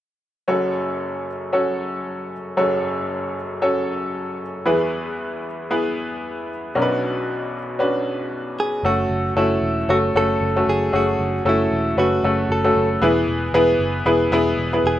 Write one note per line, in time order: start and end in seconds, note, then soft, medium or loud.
0.48 2.53 F#1 soft
0.48 2.53 F#2 soft
0.48 1.27 C#4 medium
0.48 1.27 F#4 medium
0.48 1.27 A4 medium
0.48 1.27 C#5 medium
1.53 2.32 C#4 medium
1.53 2.32 F#4 medium
1.53 2.32 A4 medium
1.53 2.32 C#5 medium
2.57 4.62 F#1 medium
2.57 4.62 F#2 medium
2.57 3.36 C#4 medium
2.57 3.36 F#4 medium
2.57 3.36 A4 medium
2.57 3.36 C#5 medium
3.62 4.41 C#4 medium
3.62 4.41 F#4 medium
3.62 4.41 A4 medium
3.62 4.41 C#5 medium
4.66 6.71 E2 medium
4.66 6.71 E3 medium
4.66 5.45 B3 medium
4.66 5.45 E4 medium
4.66 5.45 G#4 medium
4.66 5.45 B4 medium
5.70 6.50 B3 medium
5.70 6.49 E4 medium
5.70 6.50 G#4 medium
5.70 6.50 B4 medium
6.75 8.80 B1 medium
6.75 8.80 B2 medium
6.75 7.54 C#4 medium
6.75 7.54 D4 medium
6.75 7.54 F#4 medium
6.75 6.82 A#4 medium
6.82 7.57 B4 medium
7.79 8.58 C#4 medium
7.79 8.58 D4 medium
7.79 8.59 F#4 medium
7.79 8.59 B4 medium
8.60 8.85 G#4 medium
8.83 9.05 F#1 medium
8.83 9.25 A3 medium
8.83 9.25 C#4 medium
8.83 9.25 F#4 medium
8.83 9.34 F#4 medium
8.83 9.25 A4 medium
9.10 9.31 F#1 medium
9.35 9.57 F#1 medium
9.35 9.77 A3 medium
9.35 9.77 C#4 medium
9.35 9.91 E4 medium
9.35 9.77 F#4 medium
9.35 9.77 A4 medium
9.61 9.83 E1 medium
9.88 10.10 F#1 medium
9.88 10.09 A3 medium
9.88 10.09 C#4 medium
9.88 10.09 F#4 medium
9.88 9.97 F#4 medium
9.88 10.10 A4 medium
10.15 10.36 F#1 medium
10.15 10.45 A3 medium
10.15 10.45 C#4 medium
10.15 10.45 F#4 medium
10.15 10.45 A4 medium
10.15 10.65 A4 medium
10.41 10.62 F#1 medium
10.56 10.85 A3 medium
10.56 10.85 C#4 medium
10.56 10.85 F#4 medium
10.56 10.85 A4 medium
10.67 10.88 F#1 medium
10.67 10.95 G#4 medium
10.93 11.15 F#1 medium
10.93 11.34 A3 medium
10.93 11.34 C#4 medium
10.93 11.34 F#4 medium
10.93 11.43 F#4 medium
10.93 11.34 G#4 medium
11.19 11.41 F#1 medium
11.45 11.67 F#1 medium
11.45 11.86 A3 medium
11.45 11.86 C#4 medium
11.45 11.96 E4 medium
11.45 11.86 F#4 medium
11.45 11.86 A4 medium
11.71 11.93 E1 medium
11.97 12.19 F#1 medium
11.97 12.18 A3 medium
11.97 12.18 C#4 medium
11.97 12.18 F#4 medium
11.97 12.51 F#4 medium
11.97 12.18 B4 medium
12.23 12.45 F#1 medium
12.23 12.54 A3 medium
12.23 12.54 C#4 medium
12.23 12.54 F#4 medium
12.23 12.54 A4 medium
12.49 12.71 F#1 medium
12.49 12.89 A4 medium
12.64 12.93 A3 medium
12.64 12.94 C#4 medium
12.64 12.94 F#4 medium
12.64 12.94 A4 medium
12.75 12.97 F#1 medium
13.02 13.23 E1 medium
13.02 13.77 E3 medium
13.02 13.43 B3 medium
13.02 13.43 E4 medium
13.02 13.43 G#4 medium
13.02 13.43 B4 medium
13.27 13.49 E1 medium
13.53 13.75 E1 medium
13.53 13.95 B3 medium
13.53 13.95 E4 medium
13.53 13.95 G#4 medium
13.53 13.95 B4 medium
13.79 14.01 F#1 medium
14.06 14.27 E1 medium
14.06 14.27 B3 medium
14.06 14.27 E4 medium
14.06 14.27 G#4 medium
14.06 14.27 B4 medium
14.31 14.53 E1 medium
14.31 14.62 B3 medium
14.31 14.63 E4 medium
14.31 14.63 G#4 medium
14.31 14.63 B4 medium
14.57 14.79 E1 medium
14.73 14.99 B3 medium
14.73 14.99 E4 medium
14.73 14.99 G#4 medium
14.73 14.99 B4 medium
14.84 14.99 E1 medium
14.84 14.99 G#4 medium